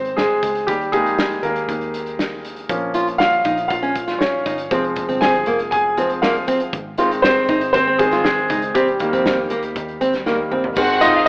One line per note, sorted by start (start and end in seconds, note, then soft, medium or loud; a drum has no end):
0.00 0.39 G#1 medium
0.00 0.18 G#3 soft
0.00 0.70 C4 medium
0.00 0.70 D#4 medium
0.00 0.70 C5 medium
0.05 closed hi-hat soft
0.17 0.65 G#3 medium
0.17 0.64 G#4 medium
0.17 snare medium
0.43 0.69 C#2 medium
0.43 kick medium
0.43 closed hi-hat medium
0.55 closed hi-hat soft
0.67 1.05 D#2 medium
0.67 0.92 G3 medium
0.67 0.91 G4 medium
0.67 kick loud
0.67 closed hi-hat medium
0.81 closed hi-hat soft
0.92 1.41 G#3 medium
0.92 1.43 A#3 soft
0.92 1.65 D#4 medium
0.92 1.65 G4 soft
0.92 1.40 G#4 medium
0.92 kick medium
0.92 closed hi-hat medium
1.05 1.41 F2 medium
1.05 closed hi-hat soft
1.19 snare loud
1.31 closed hi-hat soft
1.43 1.67 D#2 medium
1.43 1.91 A#3 medium
1.43 1.90 A#4 medium
1.43 closed hi-hat medium
1.56 closed hi-hat soft
1.69 2.66 D#2 medium
1.69 kick medium
1.69 closed hi-hat medium
1.81 closed hi-hat soft
1.94 closed hi-hat medium
2.06 closed hi-hat soft
2.19 snare medium
2.45 closed hi-hat medium
2.56 closed hi-hat soft
2.69 3.41 A#1 medium
2.69 3.41 F3 soft
2.69 3.42 A#3 soft
2.69 3.42 C#4 medium
2.69 kick loud
2.69 closed hi-hat medium
2.94 3.07 F4 medium
2.94 closed hi-hat medium
3.07 closed hi-hat soft
3.18 3.67 F4 medium
3.18 3.66 F5 loud
3.18 snare loud
3.33 closed hi-hat soft
3.45 3.69 A#1 medium
3.45 3.57 D#4 medium
3.45 kick medium
3.45 closed hi-hat medium
3.58 closed hi-hat soft
3.68 4.42 A#1 medium
3.68 4.18 F4 medium
3.68 4.21 F5 medium
3.68 kick medium
3.68 closed hi-hat medium
3.83 3.95 C#4 medium
3.83 closed hi-hat soft
3.95 kick medium
3.95 closed hi-hat medium
4.08 4.20 F4 medium
4.08 snare soft
4.08 closed hi-hat soft
4.19 4.69 C#4 medium
4.19 4.67 C#5 medium
4.19 snare medium
4.46 4.70 G1 medium
4.46 4.58 D#4 medium
4.46 kick medium
4.46 closed hi-hat medium
4.58 closed hi-hat soft
4.71 5.07 F1 medium
4.71 5.43 F3 medium
4.71 5.43 G#3 soft
4.71 4.83 C4 medium
4.71 5.44 C4 medium
4.71 kick loud
4.71 closed hi-hat medium
4.84 closed hi-hat soft
4.96 kick medium
4.96 closed hi-hat medium
5.09 5.44 G1 medium
5.09 5.33 C4 medium
5.09 closed hi-hat soft
5.21 5.69 G#4 medium
5.21 5.70 G#5 medium
5.21 snare loud
5.34 closed hi-hat soft
5.46 5.70 F1 medium
5.46 5.59 A#3 medium
5.46 closed hi-hat medium
5.59 closed hi-hat soft
5.71 6.69 F1 medium
5.71 6.20 G#4 medium
5.71 6.19 G#5 medium
5.71 kick medium
5.71 closed hi-hat medium
5.97 6.20 F3 soft
5.97 6.20 G#3 soft
5.97 6.09 C4 medium
5.97 6.21 C4 soft
5.97 closed hi-hat medium
6.10 closed hi-hat soft
6.22 6.35 A#3 medium
6.22 6.70 F4 medium
6.22 6.69 F5 medium
6.22 snare loud
6.35 closed hi-hat soft
6.48 6.60 C4 medium
6.48 kick medium
6.48 closed hi-hat medium
6.60 closed hi-hat medium
6.73 7.45 G#1 medium
6.73 kick loud
6.73 closed hi-hat medium
6.98 7.98 D#3 medium
6.98 7.99 G#3 soft
6.98 7.23 C4 medium
6.98 7.10 F4 medium
6.98 closed hi-hat medium
7.11 closed hi-hat soft
7.22 7.71 C4 medium
7.22 7.70 C5 medium
7.22 snare loud
7.48 7.72 G#1 medium
7.48 7.61 D#4 medium
7.48 kick medium
7.48 closed hi-hat medium
7.61 closed hi-hat medium
7.73 8.46 G#1 medium
7.73 7.98 C4 medium
7.73 7.99 C5 medium
7.73 kick medium
7.73 closed hi-hat medium
7.87 7.99 C4 medium
7.99 8.22 D#3 soft
7.99 8.24 G#3 medium
7.99 8.23 C4 medium
7.99 8.22 G#4 medium
7.99 kick medium
7.99 closed hi-hat medium
8.11 8.24 F4 medium
8.11 snare soft
8.11 closed hi-hat soft
8.24 8.72 G#3 medium
8.24 8.71 G#4 medium
8.24 snare medium
8.50 8.75 C#2 medium
8.50 8.62 D#4 medium
8.50 kick medium
8.50 closed hi-hat medium
8.62 closed hi-hat soft
8.74 9.10 D#2 medium
8.74 9.00 G3 medium
8.74 8.87 C4 medium
8.74 10.22 G4 medium
8.74 kick loud
8.74 closed hi-hat medium
8.88 closed hi-hat soft
8.99 10.25 D#3 medium
8.99 10.25 G3 soft
8.99 10.25 A#3 medium
8.99 kick medium
8.99 closed hi-hat medium
9.13 9.48 F2 medium
9.13 9.37 C4 medium
9.13 closed hi-hat soft
9.26 snare loud
9.50 9.74 D#2 medium
9.50 9.63 A#3 medium
9.50 closed hi-hat medium
9.63 closed hi-hat soft
9.76 10.73 D#2 medium
9.76 kick medium
9.76 closed hi-hat medium
9.88 closed hi-hat soft
10.01 10.13 C4 medium
10.01 closed hi-hat medium
10.13 snare soft
10.13 closed hi-hat soft
10.26 10.49 D#3 soft
10.26 10.49 G3 soft
10.26 10.38 A#3 medium
10.26 10.49 A#3 medium
10.26 snare soft
10.51 10.63 C4 medium
10.51 mid tom medium
10.64 floor tom medium
10.76 11.28 G#1 medium
10.76 11.28 D#3 medium
10.76 11.28 G#3 soft
10.76 11.28 C4 medium
10.76 11.12 F#4 loud
10.76 11.12 F#5 loud
10.76 kick loud
10.76 crash loud
10.76 tambourine soft
11.01 11.26 D#4 medium
11.01 11.14 F4 medium
11.01 11.24 D#5 loud
11.01 closed hi-hat medium
11.01 tambourine medium
11.15 11.25 F4 medium
11.15 11.25 F5 medium